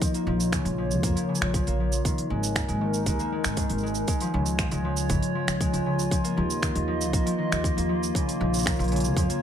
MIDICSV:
0, 0, Header, 1, 5, 480
1, 0, Start_track
1, 0, Tempo, 508475
1, 14, Time_signature, 4, 2, 24, 8
1, 8892, End_track
2, 0, Start_track
2, 0, Title_t, "Ambient pad"
2, 0, Program_c, 0, 92
2, 9, Note_on_c, 0, 73, 89
2, 10, Note_on_c, 0, 65, 70
2, 11, Note_on_c, 0, 58, 80
2, 1912, Note_off_c, 0, 73, 0
2, 1913, Note_off_c, 0, 58, 0
2, 1913, Note_off_c, 0, 65, 0
2, 1933, Note_on_c, 0, 63, 76
2, 1935, Note_on_c, 0, 56, 84
2, 1935, Note_on_c, 0, 70, 88
2, 3835, Note_off_c, 0, 63, 0
2, 3835, Note_off_c, 0, 70, 0
2, 3836, Note_off_c, 0, 56, 0
2, 3860, Note_on_c, 0, 73, 93
2, 3861, Note_on_c, 0, 65, 79
2, 3863, Note_on_c, 0, 56, 78
2, 5758, Note_off_c, 0, 73, 0
2, 5760, Note_off_c, 0, 56, 0
2, 5777, Note_on_c, 0, 58, 78
2, 5782, Note_on_c, 0, 75, 96
2, 7679, Note_off_c, 0, 75, 0
2, 7698, Note_on_c, 0, 73, 87
2, 8892, Note_off_c, 0, 58, 0
2, 8892, Note_off_c, 0, 65, 0
2, 8892, Note_off_c, 0, 73, 0
2, 8892, End_track
3, 0, Start_track
3, 0, Title_t, "Harp"
3, 0, Program_c, 1, 46
3, 0, Note_on_c, 1, 58, 79
3, 15, Note_on_c, 1, 53, 67
3, 136, Note_off_c, 1, 58, 0
3, 140, Note_on_c, 1, 58, 71
3, 249, Note_off_c, 1, 53, 0
3, 261, Note_on_c, 1, 53, 69
3, 503, Note_on_c, 1, 49, 72
3, 542, Note_off_c, 1, 53, 0
3, 738, Note_on_c, 1, 53, 75
3, 976, Note_off_c, 1, 58, 0
3, 980, Note_on_c, 1, 58, 76
3, 1080, Note_off_c, 1, 53, 0
3, 1091, Note_on_c, 1, 53, 67
3, 1202, Note_off_c, 1, 49, 0
3, 1214, Note_on_c, 1, 49, 66
3, 1262, Note_off_c, 1, 53, 0
3, 1459, Note_on_c, 1, 53, 80
3, 1572, Note_off_c, 1, 58, 0
3, 1576, Note_on_c, 1, 58, 67
3, 1688, Note_off_c, 1, 53, 0
3, 1699, Note_on_c, 1, 53, 69
3, 1932, Note_on_c, 1, 51, 73
3, 1982, Note_off_c, 1, 49, 0
3, 1982, Note_off_c, 1, 53, 0
3, 2174, Note_on_c, 1, 56, 68
3, 2411, Note_off_c, 1, 58, 0
3, 2415, Note_on_c, 1, 58, 70
3, 2520, Note_off_c, 1, 56, 0
3, 2531, Note_on_c, 1, 56, 73
3, 2642, Note_off_c, 1, 51, 0
3, 2653, Note_on_c, 1, 51, 72
3, 2702, Note_off_c, 1, 56, 0
3, 2894, Note_on_c, 1, 56, 78
3, 3015, Note_off_c, 1, 58, 0
3, 3019, Note_on_c, 1, 58, 68
3, 3126, Note_off_c, 1, 56, 0
3, 3137, Note_on_c, 1, 56, 64
3, 3364, Note_off_c, 1, 51, 0
3, 3375, Note_on_c, 1, 51, 75
3, 3422, Note_off_c, 1, 56, 0
3, 3615, Note_on_c, 1, 56, 66
3, 3844, Note_off_c, 1, 56, 0
3, 3855, Note_on_c, 1, 56, 71
3, 3902, Note_off_c, 1, 51, 0
3, 3977, Note_on_c, 1, 53, 77
3, 4094, Note_on_c, 1, 49, 65
3, 4142, Note_off_c, 1, 53, 0
3, 4335, Note_on_c, 1, 53, 76
3, 4437, Note_off_c, 1, 56, 0
3, 4449, Note_on_c, 1, 56, 74
3, 4564, Note_off_c, 1, 53, 0
3, 4575, Note_on_c, 1, 53, 75
3, 4801, Note_off_c, 1, 49, 0
3, 4813, Note_on_c, 1, 49, 81
3, 4862, Note_off_c, 1, 53, 0
3, 5052, Note_on_c, 1, 53, 68
3, 5282, Note_off_c, 1, 56, 0
3, 5293, Note_on_c, 1, 56, 78
3, 5400, Note_off_c, 1, 53, 0
3, 5411, Note_on_c, 1, 53, 70
3, 5520, Note_off_c, 1, 49, 0
3, 5531, Note_on_c, 1, 49, 70
3, 5582, Note_off_c, 1, 53, 0
3, 5766, Note_on_c, 1, 53, 66
3, 5822, Note_off_c, 1, 49, 0
3, 5822, Note_off_c, 1, 56, 0
3, 5886, Note_off_c, 1, 58, 0
3, 5890, Note_on_c, 1, 58, 77
3, 5998, Note_off_c, 1, 53, 0
3, 6009, Note_on_c, 1, 53, 72
3, 6250, Note_on_c, 1, 51, 71
3, 6302, Note_off_c, 1, 53, 0
3, 6491, Note_on_c, 1, 53, 73
3, 6726, Note_off_c, 1, 58, 0
3, 6730, Note_on_c, 1, 58, 70
3, 6840, Note_off_c, 1, 53, 0
3, 6852, Note_on_c, 1, 53, 70
3, 6958, Note_off_c, 1, 51, 0
3, 6969, Note_on_c, 1, 51, 62
3, 7022, Note_off_c, 1, 53, 0
3, 7210, Note_on_c, 1, 53, 75
3, 7327, Note_off_c, 1, 58, 0
3, 7330, Note_on_c, 1, 58, 71
3, 7436, Note_off_c, 1, 53, 0
3, 7447, Note_on_c, 1, 53, 72
3, 7692, Note_on_c, 1, 49, 73
3, 7742, Note_off_c, 1, 51, 0
3, 7742, Note_off_c, 1, 53, 0
3, 7930, Note_on_c, 1, 53, 72
3, 8169, Note_off_c, 1, 58, 0
3, 8173, Note_on_c, 1, 58, 81
3, 8287, Note_off_c, 1, 53, 0
3, 8299, Note_on_c, 1, 53, 73
3, 8405, Note_off_c, 1, 49, 0
3, 8416, Note_on_c, 1, 49, 71
3, 8462, Note_off_c, 1, 53, 0
3, 8656, Note_on_c, 1, 53, 78
3, 8769, Note_off_c, 1, 58, 0
3, 8773, Note_on_c, 1, 58, 74
3, 8878, Note_off_c, 1, 53, 0
3, 8892, Note_off_c, 1, 49, 0
3, 8892, Note_off_c, 1, 58, 0
3, 8892, End_track
4, 0, Start_track
4, 0, Title_t, "Upright bass"
4, 0, Program_c, 2, 32
4, 252, Note_on_c, 2, 34, 95
4, 549, Note_off_c, 2, 34, 0
4, 614, Note_on_c, 2, 34, 94
4, 975, Note_off_c, 2, 34, 0
4, 975, Note_on_c, 2, 41, 80
4, 1054, Note_off_c, 2, 41, 0
4, 1334, Note_on_c, 2, 34, 94
4, 1494, Note_off_c, 2, 34, 0
4, 1582, Note_on_c, 2, 34, 77
4, 1874, Note_off_c, 2, 34, 0
4, 2174, Note_on_c, 2, 32, 90
4, 2470, Note_off_c, 2, 32, 0
4, 2537, Note_on_c, 2, 32, 87
4, 2892, Note_on_c, 2, 39, 75
4, 2907, Note_off_c, 2, 32, 0
4, 2973, Note_off_c, 2, 39, 0
4, 3258, Note_on_c, 2, 32, 85
4, 3415, Note_off_c, 2, 32, 0
4, 3493, Note_on_c, 2, 32, 78
4, 3789, Note_off_c, 2, 32, 0
4, 4095, Note_on_c, 2, 37, 94
4, 4390, Note_off_c, 2, 37, 0
4, 4452, Note_on_c, 2, 37, 94
4, 4813, Note_on_c, 2, 32, 79
4, 4827, Note_off_c, 2, 37, 0
4, 4894, Note_off_c, 2, 32, 0
4, 5168, Note_on_c, 2, 37, 89
4, 5331, Note_off_c, 2, 37, 0
4, 5412, Note_on_c, 2, 37, 80
4, 5709, Note_off_c, 2, 37, 0
4, 6018, Note_on_c, 2, 39, 91
4, 6312, Note_off_c, 2, 39, 0
4, 6376, Note_on_c, 2, 39, 86
4, 6736, Note_off_c, 2, 39, 0
4, 6736, Note_on_c, 2, 34, 81
4, 6815, Note_off_c, 2, 34, 0
4, 7098, Note_on_c, 2, 39, 90
4, 7256, Note_off_c, 2, 39, 0
4, 7342, Note_on_c, 2, 39, 84
4, 7634, Note_off_c, 2, 39, 0
4, 7935, Note_on_c, 2, 34, 99
4, 8230, Note_off_c, 2, 34, 0
4, 8297, Note_on_c, 2, 34, 93
4, 8652, Note_off_c, 2, 34, 0
4, 8652, Note_on_c, 2, 41, 85
4, 8733, Note_off_c, 2, 41, 0
4, 8892, End_track
5, 0, Start_track
5, 0, Title_t, "Drums"
5, 15, Note_on_c, 9, 36, 103
5, 19, Note_on_c, 9, 46, 56
5, 20, Note_on_c, 9, 82, 53
5, 109, Note_off_c, 9, 36, 0
5, 114, Note_off_c, 9, 46, 0
5, 114, Note_off_c, 9, 82, 0
5, 136, Note_on_c, 9, 46, 39
5, 137, Note_on_c, 9, 82, 32
5, 231, Note_off_c, 9, 46, 0
5, 231, Note_off_c, 9, 82, 0
5, 380, Note_on_c, 9, 46, 30
5, 380, Note_on_c, 9, 82, 69
5, 474, Note_off_c, 9, 46, 0
5, 475, Note_off_c, 9, 82, 0
5, 495, Note_on_c, 9, 36, 100
5, 498, Note_on_c, 9, 26, 70
5, 498, Note_on_c, 9, 46, 59
5, 499, Note_on_c, 9, 82, 52
5, 590, Note_off_c, 9, 36, 0
5, 593, Note_off_c, 9, 26, 0
5, 593, Note_off_c, 9, 46, 0
5, 593, Note_off_c, 9, 82, 0
5, 619, Note_on_c, 9, 46, 35
5, 619, Note_on_c, 9, 82, 30
5, 713, Note_off_c, 9, 46, 0
5, 714, Note_off_c, 9, 82, 0
5, 860, Note_on_c, 9, 82, 63
5, 954, Note_off_c, 9, 82, 0
5, 975, Note_on_c, 9, 36, 108
5, 979, Note_on_c, 9, 46, 56
5, 979, Note_on_c, 9, 82, 49
5, 1069, Note_off_c, 9, 36, 0
5, 1073, Note_off_c, 9, 46, 0
5, 1074, Note_off_c, 9, 82, 0
5, 1102, Note_on_c, 9, 46, 42
5, 1103, Note_on_c, 9, 82, 36
5, 1197, Note_off_c, 9, 46, 0
5, 1197, Note_off_c, 9, 82, 0
5, 1275, Note_on_c, 9, 82, 63
5, 1339, Note_on_c, 9, 26, 77
5, 1339, Note_on_c, 9, 46, 28
5, 1370, Note_off_c, 9, 82, 0
5, 1434, Note_off_c, 9, 26, 0
5, 1434, Note_off_c, 9, 46, 0
5, 1455, Note_on_c, 9, 36, 106
5, 1457, Note_on_c, 9, 46, 61
5, 1457, Note_on_c, 9, 82, 60
5, 1549, Note_off_c, 9, 36, 0
5, 1551, Note_off_c, 9, 46, 0
5, 1552, Note_off_c, 9, 82, 0
5, 1578, Note_on_c, 9, 46, 41
5, 1578, Note_on_c, 9, 82, 33
5, 1672, Note_off_c, 9, 46, 0
5, 1672, Note_off_c, 9, 82, 0
5, 1816, Note_on_c, 9, 82, 62
5, 1910, Note_off_c, 9, 82, 0
5, 1935, Note_on_c, 9, 36, 98
5, 1940, Note_on_c, 9, 46, 58
5, 1940, Note_on_c, 9, 82, 52
5, 2030, Note_off_c, 9, 36, 0
5, 2035, Note_off_c, 9, 46, 0
5, 2035, Note_off_c, 9, 82, 0
5, 2060, Note_on_c, 9, 46, 42
5, 2155, Note_off_c, 9, 46, 0
5, 2298, Note_on_c, 9, 46, 27
5, 2299, Note_on_c, 9, 82, 65
5, 2393, Note_off_c, 9, 46, 0
5, 2393, Note_off_c, 9, 82, 0
5, 2413, Note_on_c, 9, 36, 100
5, 2417, Note_on_c, 9, 26, 71
5, 2417, Note_on_c, 9, 46, 54
5, 2417, Note_on_c, 9, 82, 49
5, 2508, Note_off_c, 9, 36, 0
5, 2511, Note_off_c, 9, 26, 0
5, 2511, Note_off_c, 9, 46, 0
5, 2511, Note_off_c, 9, 82, 0
5, 2536, Note_on_c, 9, 46, 37
5, 2536, Note_on_c, 9, 82, 30
5, 2630, Note_off_c, 9, 46, 0
5, 2630, Note_off_c, 9, 82, 0
5, 2774, Note_on_c, 9, 82, 63
5, 2868, Note_off_c, 9, 82, 0
5, 2892, Note_on_c, 9, 36, 96
5, 2893, Note_on_c, 9, 46, 53
5, 2893, Note_on_c, 9, 82, 54
5, 2987, Note_off_c, 9, 36, 0
5, 2987, Note_off_c, 9, 46, 0
5, 2988, Note_off_c, 9, 82, 0
5, 3015, Note_on_c, 9, 82, 33
5, 3110, Note_off_c, 9, 82, 0
5, 3252, Note_on_c, 9, 26, 72
5, 3252, Note_on_c, 9, 46, 27
5, 3252, Note_on_c, 9, 82, 63
5, 3346, Note_off_c, 9, 26, 0
5, 3346, Note_off_c, 9, 46, 0
5, 3346, Note_off_c, 9, 82, 0
5, 3370, Note_on_c, 9, 46, 64
5, 3370, Note_on_c, 9, 82, 55
5, 3372, Note_on_c, 9, 36, 102
5, 3464, Note_off_c, 9, 46, 0
5, 3464, Note_off_c, 9, 82, 0
5, 3466, Note_off_c, 9, 36, 0
5, 3489, Note_on_c, 9, 46, 39
5, 3489, Note_on_c, 9, 82, 15
5, 3570, Note_off_c, 9, 82, 0
5, 3570, Note_on_c, 9, 82, 21
5, 3583, Note_off_c, 9, 46, 0
5, 3650, Note_off_c, 9, 82, 0
5, 3650, Note_on_c, 9, 82, 23
5, 3725, Note_off_c, 9, 82, 0
5, 3725, Note_on_c, 9, 82, 62
5, 3820, Note_off_c, 9, 82, 0
5, 3849, Note_on_c, 9, 46, 57
5, 3849, Note_on_c, 9, 82, 51
5, 3851, Note_on_c, 9, 36, 98
5, 3943, Note_off_c, 9, 46, 0
5, 3944, Note_off_c, 9, 82, 0
5, 3946, Note_off_c, 9, 36, 0
5, 3969, Note_on_c, 9, 46, 41
5, 3970, Note_on_c, 9, 82, 33
5, 4064, Note_off_c, 9, 46, 0
5, 4064, Note_off_c, 9, 82, 0
5, 4209, Note_on_c, 9, 46, 28
5, 4210, Note_on_c, 9, 82, 62
5, 4304, Note_off_c, 9, 46, 0
5, 4304, Note_off_c, 9, 82, 0
5, 4331, Note_on_c, 9, 26, 73
5, 4331, Note_on_c, 9, 46, 57
5, 4331, Note_on_c, 9, 82, 52
5, 4332, Note_on_c, 9, 36, 96
5, 4425, Note_off_c, 9, 26, 0
5, 4425, Note_off_c, 9, 46, 0
5, 4425, Note_off_c, 9, 82, 0
5, 4426, Note_off_c, 9, 36, 0
5, 4450, Note_on_c, 9, 46, 38
5, 4451, Note_on_c, 9, 82, 29
5, 4545, Note_off_c, 9, 46, 0
5, 4545, Note_off_c, 9, 82, 0
5, 4689, Note_on_c, 9, 82, 63
5, 4784, Note_off_c, 9, 82, 0
5, 4811, Note_on_c, 9, 36, 106
5, 4811, Note_on_c, 9, 46, 58
5, 4811, Note_on_c, 9, 82, 48
5, 4905, Note_off_c, 9, 46, 0
5, 4905, Note_off_c, 9, 82, 0
5, 4906, Note_off_c, 9, 36, 0
5, 4933, Note_on_c, 9, 46, 41
5, 4933, Note_on_c, 9, 82, 30
5, 5027, Note_off_c, 9, 46, 0
5, 5027, Note_off_c, 9, 82, 0
5, 5174, Note_on_c, 9, 26, 67
5, 5174, Note_on_c, 9, 46, 27
5, 5174, Note_on_c, 9, 82, 60
5, 5268, Note_off_c, 9, 26, 0
5, 5268, Note_off_c, 9, 46, 0
5, 5269, Note_off_c, 9, 82, 0
5, 5292, Note_on_c, 9, 36, 99
5, 5296, Note_on_c, 9, 46, 57
5, 5297, Note_on_c, 9, 82, 55
5, 5386, Note_off_c, 9, 36, 0
5, 5391, Note_off_c, 9, 46, 0
5, 5391, Note_off_c, 9, 82, 0
5, 5415, Note_on_c, 9, 46, 38
5, 5416, Note_on_c, 9, 82, 33
5, 5510, Note_off_c, 9, 46, 0
5, 5510, Note_off_c, 9, 82, 0
5, 5657, Note_on_c, 9, 82, 60
5, 5751, Note_off_c, 9, 82, 0
5, 5772, Note_on_c, 9, 36, 94
5, 5778, Note_on_c, 9, 46, 63
5, 5778, Note_on_c, 9, 82, 47
5, 5866, Note_off_c, 9, 36, 0
5, 5872, Note_off_c, 9, 46, 0
5, 5873, Note_off_c, 9, 82, 0
5, 5897, Note_on_c, 9, 46, 42
5, 5897, Note_on_c, 9, 82, 30
5, 5991, Note_off_c, 9, 46, 0
5, 5992, Note_off_c, 9, 82, 0
5, 6140, Note_on_c, 9, 46, 30
5, 6140, Note_on_c, 9, 82, 66
5, 6234, Note_off_c, 9, 46, 0
5, 6234, Note_off_c, 9, 82, 0
5, 6254, Note_on_c, 9, 36, 88
5, 6258, Note_on_c, 9, 26, 69
5, 6258, Note_on_c, 9, 46, 61
5, 6258, Note_on_c, 9, 82, 50
5, 6349, Note_off_c, 9, 36, 0
5, 6352, Note_off_c, 9, 26, 0
5, 6352, Note_off_c, 9, 46, 0
5, 6353, Note_off_c, 9, 82, 0
5, 6377, Note_on_c, 9, 46, 42
5, 6471, Note_off_c, 9, 46, 0
5, 6619, Note_on_c, 9, 82, 68
5, 6714, Note_off_c, 9, 82, 0
5, 6734, Note_on_c, 9, 36, 96
5, 6738, Note_on_c, 9, 46, 61
5, 6739, Note_on_c, 9, 82, 49
5, 6829, Note_off_c, 9, 36, 0
5, 6833, Note_off_c, 9, 46, 0
5, 6833, Note_off_c, 9, 82, 0
5, 6860, Note_on_c, 9, 46, 42
5, 6861, Note_on_c, 9, 82, 31
5, 6955, Note_off_c, 9, 46, 0
5, 6955, Note_off_c, 9, 82, 0
5, 7103, Note_on_c, 9, 26, 74
5, 7103, Note_on_c, 9, 46, 27
5, 7103, Note_on_c, 9, 82, 57
5, 7197, Note_off_c, 9, 26, 0
5, 7197, Note_off_c, 9, 46, 0
5, 7197, Note_off_c, 9, 82, 0
5, 7213, Note_on_c, 9, 36, 97
5, 7221, Note_on_c, 9, 46, 64
5, 7221, Note_on_c, 9, 82, 55
5, 7308, Note_off_c, 9, 36, 0
5, 7315, Note_off_c, 9, 46, 0
5, 7316, Note_off_c, 9, 82, 0
5, 7343, Note_on_c, 9, 46, 43
5, 7343, Note_on_c, 9, 82, 31
5, 7437, Note_off_c, 9, 46, 0
5, 7438, Note_off_c, 9, 82, 0
5, 7583, Note_on_c, 9, 82, 59
5, 7677, Note_off_c, 9, 82, 0
5, 7693, Note_on_c, 9, 36, 91
5, 7704, Note_on_c, 9, 46, 67
5, 7704, Note_on_c, 9, 82, 47
5, 7788, Note_off_c, 9, 36, 0
5, 7798, Note_off_c, 9, 46, 0
5, 7798, Note_off_c, 9, 82, 0
5, 7824, Note_on_c, 9, 46, 44
5, 7824, Note_on_c, 9, 82, 29
5, 7918, Note_off_c, 9, 46, 0
5, 7918, Note_off_c, 9, 82, 0
5, 8062, Note_on_c, 9, 46, 30
5, 8062, Note_on_c, 9, 82, 60
5, 8103, Note_off_c, 9, 82, 0
5, 8103, Note_on_c, 9, 82, 48
5, 8144, Note_off_c, 9, 82, 0
5, 8144, Note_on_c, 9, 82, 40
5, 8156, Note_off_c, 9, 46, 0
5, 8173, Note_on_c, 9, 36, 95
5, 8184, Note_off_c, 9, 82, 0
5, 8184, Note_on_c, 9, 26, 66
5, 8184, Note_on_c, 9, 46, 63
5, 8184, Note_on_c, 9, 82, 48
5, 8266, Note_off_c, 9, 82, 0
5, 8266, Note_on_c, 9, 82, 21
5, 8268, Note_off_c, 9, 36, 0
5, 8278, Note_off_c, 9, 26, 0
5, 8278, Note_off_c, 9, 46, 0
5, 8307, Note_off_c, 9, 82, 0
5, 8307, Note_on_c, 9, 46, 18
5, 8307, Note_on_c, 9, 82, 27
5, 8345, Note_off_c, 9, 46, 0
5, 8345, Note_on_c, 9, 46, 21
5, 8382, Note_off_c, 9, 46, 0
5, 8382, Note_on_c, 9, 46, 26
5, 8402, Note_off_c, 9, 82, 0
5, 8419, Note_off_c, 9, 46, 0
5, 8419, Note_on_c, 9, 46, 30
5, 8460, Note_off_c, 9, 46, 0
5, 8460, Note_on_c, 9, 46, 35
5, 8499, Note_off_c, 9, 46, 0
5, 8499, Note_on_c, 9, 46, 39
5, 8538, Note_on_c, 9, 82, 66
5, 8593, Note_off_c, 9, 46, 0
5, 8633, Note_off_c, 9, 82, 0
5, 8652, Note_on_c, 9, 36, 101
5, 8659, Note_on_c, 9, 46, 61
5, 8660, Note_on_c, 9, 82, 48
5, 8747, Note_off_c, 9, 36, 0
5, 8754, Note_off_c, 9, 46, 0
5, 8754, Note_off_c, 9, 82, 0
5, 8778, Note_on_c, 9, 46, 46
5, 8779, Note_on_c, 9, 82, 30
5, 8873, Note_off_c, 9, 46, 0
5, 8873, Note_off_c, 9, 82, 0
5, 8892, End_track
0, 0, End_of_file